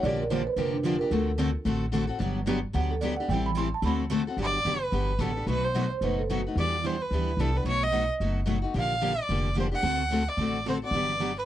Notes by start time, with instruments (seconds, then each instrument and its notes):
0.03 upright bass A#1, steel-string acoustic guitar D3 F3 A#3 D4 G4, marimba D5
0.20 marimba A#4
0.30 steel-string acoustic guitar D3 F3 A#3 D4 G4, marimba C5
0.47 marimba B4
0.56 upright bass F1, steel-string acoustic guitar D3 F3 A#3 D4 G4, marimba A#4
0.73 marimba D4
0.83 steel-string acoustic guitar D3 F3 A#3 D4 G4, marimba F4
0.99 steel-string acoustic guitar A#3 D4 G4, marimba A#4
1.11 upright bass D2, steel-string acoustic guitar D3 A3 C4 F#4 A4, marimba A4
1.38 steel-string acoustic guitar D3 A3 C4 F#4 A4
1.65 upright bass A1, steel-string acoustic guitar D3 A3 C4 F#4 A4
1.92 steel-string acoustic guitar D3 A3 C4 F#4 A4
2.07 steel-string acoustic guitar C4 F#4 A4
2.19 upright bass G1, steel-string acoustic guitar D3 F#3 B3 D4 G4
2.46 steel-string acoustic guitar D3 F#3 B3 D4 G4
2.74 upright bass D2, steel-string acoustic guitar D3 F#3 B3 D4 G4, marimba F#5
2.91 marimba A4
3.01 steel-string acoustic guitar D3 F#3 B3 D4 G4, marimba D5
3.16 steel-string acoustic guitar D4 G4, marimba F#5
3.22 steel-string acoustic guitar B3
3.29 upright bass A1, steel-string acoustic guitar E3 G3, marimba G5
3.33 steel-string acoustic guitar C4 E4 A4
3.46 marimba B5
3.57 steel-string acoustic guitar E3 G3 C4 E4 A4, marimba C6
3.74 marimba A5
3.82 upright bass D2, steel-string acoustic guitar D3 A3 C4 F#4 A4, marimba B5
3.87 steel-string acoustic guitar C4 F#4 A4
4.11 steel-string acoustic guitar D3 A3 C4 F#4 A4
4.27 steel-string acoustic guitar C4 F#4 A4
4.37 upright bass G1, steel-string acoustic guitar D3 F#3 B3 D4 G4
4.42 violin D5
4.65 upright bass F#1, steel-string acoustic guitar D3 F#3 B3 D4 G4
4.83 violin B4
4.92 upright bass G1, steel-string acoustic guitar D3 F#3 B3 D4 G4
5.19 upright bass A1, steel-string acoustic guitar D3 F#3 B3 D4 G4, violin A4
5.36 steel-string acoustic guitar B3 D4 G4
5.47 upright bass B1, steel-string acoustic guitar B2 F#3 A3 D#4 F#4 B4, violin B4
5.64 violin C5
5.74 steel-string acoustic guitar B2 F#3 A3 D#4 F#4 B4
5.90 marimba C5
6.01 upright bass F#1, steel-string acoustic guitar B2 F#3 A3 D#4 F#4 B4, marimba B4
6.19 marimba A4
6.30 steel-string acoustic guitar B2 F#3 A3 D#4 F#4 B4, marimba F#4
6.47 steel-string acoustic guitar A3 D#4 F#4
6.56 upright bass E2, steel-string acoustic guitar E3 G3 B3 D4 E4 G4 B4, violin D5
6.84 steel-string acoustic guitar E3 G3 B3 D4 E4 G4 B4, violin C5
7.02 violin B4
7.11 upright bass D2, steel-string acoustic guitar E3 G3 B3 D4 E4 G4 B4
7.37 upright bass C2, steel-string acoustic guitar E3 G3 B3 D4 G4, violin A4
7.41 steel-string acoustic guitar E4 B4
7.54 steel-string acoustic guitar B3 D4 G4, violin B4
7.64 upright bass B1, steel-string acoustic guitar B2 F#3 A3 D#4 F#4 B4, violin C#5
7.83 violin D#5
7.91 steel-string acoustic guitar B2 F#3 A3 D#4 F#4 B4
8.20 upright bass F#1, steel-string acoustic guitar B2 F#3 A3 D#4 F#4 B4
8.46 steel-string acoustic guitar B2 F#3 A3 D#4 F#4 B4
8.62 steel-string acoustic guitar A3 D#4 F#4
8.74 upright bass A#1, steel-string acoustic guitar D3 F3 A#3 D4 G4
8.79 violin F5
9.01 steel-string acoustic guitar D3 F3 A#3 D4 G4
9.22 violin D5
9.29 upright bass F1, steel-string acoustic guitar D3 F3 A#3 D4 G4
9.57 steel-string acoustic guitar D3 F3 A#3 D4 G4, violin C5
9.72 steel-string acoustic guitar A#3 D4 G4, violin F#5
9.83 upright bass D2, steel-string acoustic guitar D3 A3 C4 F#4 A4
10.12 steel-string acoustic guitar D3 A3 C4 F#4 A4
10.29 violin D5
10.37 upright bass A1, steel-string acoustic guitar D3 A3 C4 A4
10.41 steel-string acoustic guitar F#4 A4
10.68 steel-string acoustic guitar D3 A3 C4 F#4 A4, violin C5
10.82 steel-string acoustic guitar C4 F#4 A4, violin D5
10.91 upright bass G1, steel-string acoustic guitar D3 F#3 B3 D4 G4
11.20 steel-string acoustic guitar D3 F#3 B3 D4 G4
11.39 violin B4